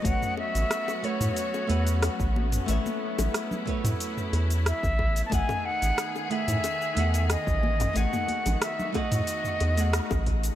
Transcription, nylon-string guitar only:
X:1
M:4/4
L:1/16
Q:1/4=91
K:Alyd
V:1 name="Nylon-string guitar"
[A,FBc]6 [A,FBc]4 [A,FBf]6 | [A,FBe]6 [A,FBc]8- [A,FBc]2 | [A,DGf]6 [D,A,Gf]4 [D,A,Gf]6 | [A,DGg]6 [A,DGf]4- [A,DGf] [A,DGf]4- [A,DGf] |]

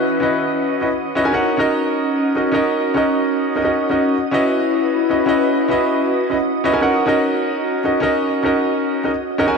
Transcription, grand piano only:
X:1
M:4/4
L:1/16
Q:1/4=175
K:D#phr
V:1 name="Grand piano"
[CEFBd]2 [CEFBd]6- [CEFBd] [CEFBd] z3 [CEFBd] [CDFAg] [CDFAf]- | [CDFAf]2 [CDFAd]8- [CDFAd] [CDFAd]2 [CDFAd]3- | [CDFAd]2 [CDFAd]6- [CDFAd] [CDFAd] [CDFAd]3 [CDFAd]3 | z2 [CEFBd]8- [CEFBd] [CEFBd]2 [CEFBd]3- |
[CEFBd]2 [CEFBd]6- [CEFBd] [CEFBd] z3 [CEFBd] [CDFAg] [CDFAf]- | [CDFAf]2 [CDFAd]8- [CDFAd] [CDFAd]2 [CDFAd]3- | [CDFAd]2 [CDFAd]6- [CDFAd] [CDFAd] z3 [CDFAd] [CDFAg] z |]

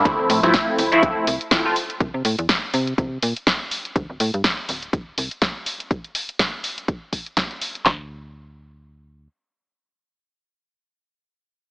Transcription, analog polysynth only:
X:1
M:4/4
L:1/16
Q:"Swing 16ths" 1/4=123
K:Dm
V:1 name="Analog polysynth"
[F,A,CE]3 [F,A,CE]4 [F,A,CE]3 z2 [F,A,CE] [F,A,CF] z2 | z16 | z16 | z16 |
z16 | z16 |]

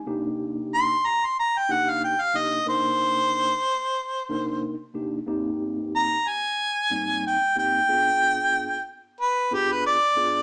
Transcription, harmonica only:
X:1
M:4/4
L:1/16
Q:"Swing 16ths" 1/4=92
K:Cm
V:1 name="Harmonica"
z4 c'2 b c' b g ^f =f g f e2 | c12 z4 | z4 b2 a6 g2 g2- | g6 z2 =B2 G B d4 |]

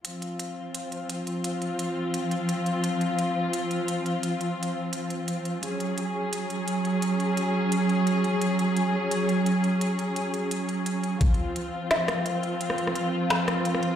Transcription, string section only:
X:1
M:4/4
L:1/8
Q:"Swing 16ths" 1/4=172
K:Fphr
V:1 name="String section"
[F,CF]8- | [F,CF]8- | [F,CF]8- | [F,CF]8 |
[G,DA]8- | [G,DA]8- | [G,DA]8- | [G,DA]8 |
[F,CF]8- | [F,CF]8 |]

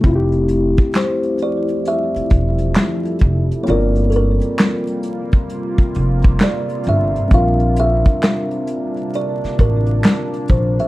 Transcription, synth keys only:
X:1
M:4/4
L:1/8
Q:"Swing 16ths" 1/4=66
K:F
V:1 name="Synth keys"
[A,CEFG]8 | [B,CFB]8 | [CDFB]8 |]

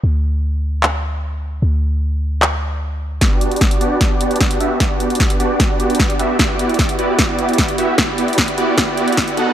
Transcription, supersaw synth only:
X:1
M:4/4
L:1/8
Q:1/4=151
K:Em
V:1 name="Supersaw synth"
z8 | z8 | [B,DFGd]3 [B,DFGd]4 [B,DFGe] | [B,DFGd]3 [B,DFGd]4 [B,DFGe] |
[B,EFGd]3 [B,EFGd]4 [B,EFGe] | [B,EFGd]3 [B,EFGd]4 [B,^DFAf] |]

